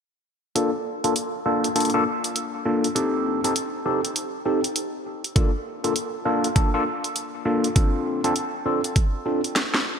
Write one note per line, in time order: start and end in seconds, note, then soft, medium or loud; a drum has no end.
0.55 0.70 A#3 medium
0.55 0.70 D4 medium
0.55 0.70 F4 medium
0.55 0.70 A4 medium
0.55 closed hi-hat medium
1.04 1.13 A#3 medium
1.04 1.13 D4 medium
1.04 1.13 F4 medium
1.04 1.13 A4 medium
1.04 closed hi-hat soft
1.16 closed hi-hat medium
1.46 1.67 A#3 medium
1.46 1.67 D4 medium
1.46 1.67 F4 medium
1.46 1.67 A4 medium
1.64 closed hi-hat soft
1.76 1.90 A#3 medium
1.76 1.90 D4 medium
1.76 1.90 F4 medium
1.76 1.90 A4 medium
1.76 closed hi-hat medium
1.80 closed hi-hat soft
1.85 closed hi-hat soft
1.90 closed hi-hat soft
1.94 2.03 A#3 medium
1.94 2.03 D4 medium
1.94 2.03 F4 medium
1.94 2.03 A4 loud
2.24 closed hi-hat medium
2.36 closed hi-hat medium
2.65 2.87 A#3 medium
2.65 2.87 D4 medium
2.65 2.87 F4 medium
2.65 2.87 A4 medium
2.84 closed hi-hat soft
2.96 3.40 C4 medium
2.96 3.40 D#4 medium
2.96 3.40 G4 medium
2.96 3.40 A4 medium
2.96 closed hi-hat medium
3.44 3.53 C4 medium
3.44 3.53 D#4 medium
3.44 3.53 G4 medium
3.44 3.53 A4 medium
3.44 closed hi-hat soft
3.56 closed hi-hat medium
3.86 4.00 C4 medium
3.86 4.00 D#4 medium
3.86 4.00 G4 medium
3.86 4.00 A4 medium
4.05 closed hi-hat soft
4.16 closed hi-hat medium
4.46 4.60 C4 medium
4.46 4.60 D#4 medium
4.46 4.60 G4 medium
4.46 4.60 A4 medium
4.64 closed hi-hat medium
4.76 closed hi-hat medium
5.24 closed hi-hat soft
5.36 5.50 A#3 medium
5.36 5.50 D4 medium
5.36 5.50 F4 medium
5.36 5.50 A4 medium
5.36 kick loud
5.36 closed hi-hat medium
5.84 5.93 A#3 medium
5.84 5.93 D4 medium
5.84 5.93 F4 medium
5.84 5.93 A4 medium
5.84 closed hi-hat soft
5.96 closed hi-hat medium
6.25 6.47 A#3 medium
6.25 6.47 D4 medium
6.25 6.47 F4 medium
6.25 6.47 A4 medium
6.44 closed hi-hat soft
6.55 6.70 A#3 medium
6.55 6.70 D4 medium
6.55 6.70 F4 medium
6.55 6.70 A4 medium
6.55 kick loud
6.55 closed hi-hat medium
6.74 6.83 A#3 medium
6.74 6.83 D4 medium
6.74 6.83 F4 medium
6.74 6.83 A4 loud
7.04 closed hi-hat medium
7.16 closed hi-hat medium
7.45 7.67 A#3 medium
7.45 7.67 D4 medium
7.45 7.67 F4 medium
7.45 7.67 A4 medium
7.64 closed hi-hat soft
7.75 8.20 C4 medium
7.75 8.20 D4 medium
7.75 8.20 F4 medium
7.75 8.20 A4 medium
7.75 kick loud
7.75 closed hi-hat medium
8.24 8.33 C4 medium
8.24 8.33 D4 medium
8.24 8.33 F4 medium
8.24 8.33 A4 medium
8.24 closed hi-hat soft
8.36 closed hi-hat medium
8.66 8.80 C4 medium
8.66 8.80 D4 medium
8.66 8.80 F4 medium
8.66 8.80 A4 medium
8.84 closed hi-hat soft
8.96 kick loud
8.96 closed hi-hat medium
9.26 9.40 C4 medium
9.26 9.40 D4 medium
9.26 9.40 F4 medium
9.26 9.40 A4 medium
9.44 closed hi-hat soft
9.56 snare medium
9.56 closed hi-hat medium
9.74 snare medium